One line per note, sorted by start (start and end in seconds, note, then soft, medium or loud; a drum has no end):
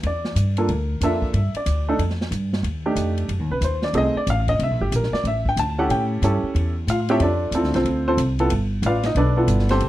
0.03 0.35 E2 medium
0.03 0.55 D5 medium
0.03 ride medium
0.24 snare soft
0.35 0.67 G2 medium
0.35 hi-hat pedal medium
0.35 ride medium
0.57 0.68 A#3 medium
0.57 0.68 D4 medium
0.57 0.68 F4 medium
0.57 0.68 A4 medium
0.57 0.99 A#4 medium
0.57 ride soft
0.69 1.00 D2 medium
0.69 ride medium
1.01 1.33 F2 medium
1.01 1.35 A#3 medium
1.01 1.35 D4 medium
1.01 1.35 F4 medium
1.01 1.35 A4 medium
1.01 1.53 E5 medium
1.01 hi-hat pedal medium
1.01 ride medium
1.22 kick medium
1.33 1.53 G2 medium
1.33 ride medium
1.54 1.97 D5 medium
1.54 muted upright bass stroke soft
1.54 ride soft
1.66 1.98 D2 medium
1.66 hi-hat pedal medium
1.66 ride medium
1.89 1.99 A3 medium
1.89 1.99 D4 medium
1.89 1.99 D#4 medium
1.89 1.99 A4 medium
1.99 2.30 F2 medium
1.99 ride medium
2.10 snare soft
2.21 snare soft
2.31 2.62 G2 medium
2.31 hi-hat pedal medium
2.31 ride medium
2.53 snare medium
2.63 2.95 D#2 medium
2.63 ride medium
2.86 3.27 A3 medium
2.86 3.28 D4 medium
2.86 3.28 D#4 medium
2.86 3.28 G4 medium
2.96 3.28 F2 medium
2.96 hi-hat pedal medium
2.96 ride medium
3.18 ride soft
3.28 3.39 F#2 medium
3.28 ride medium
3.39 3.50 D#2 medium
3.50 3.60 C2 medium
3.50 3.62 B4 medium
3.61 3.93 D#2 medium
3.61 3.83 C5 medium
3.61 hi-hat pedal medium
3.61 ride medium
3.82 3.95 D5 medium
3.82 snare soft
3.93 4.13 C2 medium
3.93 4.13 A3 medium
3.93 4.13 C4 medium
3.93 4.14 D#4 medium
3.93 4.14 G#4 medium
3.93 ride medium
3.97 4.16 D#5 loud
4.15 4.28 D5 medium
4.15 muted upright bass stroke soft
4.27 4.59 A1 medium
4.27 4.49 F5 medium
4.27 hi-hat pedal medium
4.27 ride medium
4.48 4.60 D#5 medium
4.48 kick medium
4.48 ride soft
4.59 4.70 C2 medium
4.59 ride medium
4.63 4.82 E5 medium
4.70 4.80 A#1 medium
4.80 4.91 G1 medium
4.80 4.93 G4 medium
4.92 5.11 A#1 loud
4.92 hi-hat pedal medium
4.92 ride medium
4.96 5.14 A#4 medium
5.03 snare soft
5.12 5.25 D5 medium
5.12 muted upright bass stroke soft
5.12 snare soft
5.24 5.56 A1 medium
5.24 5.46 E5 medium
5.24 ride medium
5.45 5.59 G5 medium
5.45 kick medium
5.56 5.89 D2 medium
5.56 5.79 A5 loud
5.56 hi-hat pedal medium
5.56 ride medium
5.78 6.20 C#4 medium
5.78 6.21 E4 medium
5.78 6.21 G4 medium
5.78 6.21 A4 medium
5.78 5.90 F#5 loud
5.89 6.21 A2 medium
5.89 6.03 G5 medium
5.89 ride medium
6.22 6.42 G2 medium
6.22 6.72 C#4 medium
6.22 6.72 E4 medium
6.22 6.73 G4 medium
6.22 6.73 A4 medium
6.22 hi-hat pedal medium
6.22 ride medium
6.43 muted upright bass stroke soft
6.54 6.87 E2 medium
6.54 ride medium
6.87 7.19 A2 medium
6.87 7.09 F4 medium
6.87 7.09 F5 medium
6.87 hi-hat pedal medium
6.87 ride medium
7.09 7.20 C4 medium
7.09 7.20 E4 medium
7.09 7.20 F4 medium
7.09 7.20 G4 medium
7.09 7.21 A4 medium
7.09 7.21 C#5 medium
7.09 7.21 E5 loud
7.09 ride soft
7.20 7.51 F2 medium
7.20 7.72 D4 medium
7.20 7.53 F4 medium
7.20 7.53 A4 medium
7.20 7.71 D5 medium
7.20 ride medium
7.51 7.63 E2 medium
7.51 7.74 C4 medium
7.51 8.03 E4 medium
7.51 7.74 F4 medium
7.51 7.74 A4 medium
7.51 hi-hat pedal medium
7.51 ride medium
7.63 7.73 D2 medium
7.63 snare soft
7.74 7.84 C2 medium
7.74 8.05 C4 medium
7.74 8.05 F4 medium
7.74 8.05 A4 medium
7.74 8.05 C5 medium
7.74 snare soft
7.74 ride soft
7.85 8.17 D2 medium
7.85 ride medium
8.08 8.19 C4 medium
8.08 8.19 F4 medium
8.08 8.19 A4 medium
8.08 8.19 C5 loud
8.17 8.49 C2 medium
8.17 hi-hat pedal medium
8.17 ride medium
8.39 8.50 B3 medium
8.39 8.50 E4 medium
8.39 8.50 F4 medium
8.39 8.50 A4 medium
8.39 ride soft
8.50 8.82 G1 medium
8.50 ride medium
8.82 9.14 A1 medium
8.82 9.05 D5 medium
8.82 hi-hat pedal medium
8.82 ride medium
8.86 9.05 F4 medium
8.86 9.05 B4 medium
8.86 9.05 F5 medium
9.03 9.17 D#4 medium
9.03 9.17 D#5 medium
9.03 snare soft
9.03 ride soft
9.15 9.47 B1 medium
9.15 9.66 D4 medium
9.15 9.36 A4 medium
9.15 9.66 B4 medium
9.15 9.66 D5 medium
9.15 ride medium
9.37 9.79 B3 medium
9.37 9.79 E4 medium
9.37 9.79 F4 medium
9.37 9.70 A4 medium
9.48 9.80 G1 loud
9.48 hi-hat pedal medium
9.48 ride medium
9.59 snare soft
9.69 9.89 C4 medium
9.69 9.89 G4 medium
9.69 9.89 A4 medium
9.69 9.89 C5 loud
9.69 snare soft
9.69 ride soft
9.80 9.89 C2 medium
9.80 ride medium